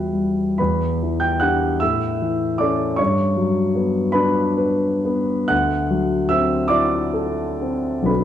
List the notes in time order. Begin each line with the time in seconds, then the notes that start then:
Already playing: E2 E3 G3 B3 F#4 E5 G5 B5 F#6
0.12 G3
0.58 E2 B4 B5
1.03 E3
1.20 G5 G6
1.40 D4 G4 F#5 F#6
1.80 A2 E5 E6
2.21 E3
2.58 C#4 A4 D5 D6
2.96 G2 C#5 C#6
3.37 F#3
3.75 B3
4.12 D4 B4 B5
4.57 B4
5.05 B3
5.48 D2 F#5 F#6
5.90 F#3
6.29 C4 E5 E6
6.68 E4 D5 D6
7.14 A4
7.61 C4
8.02 B1 F#3 B3 D4 B5
8.06 A4 B4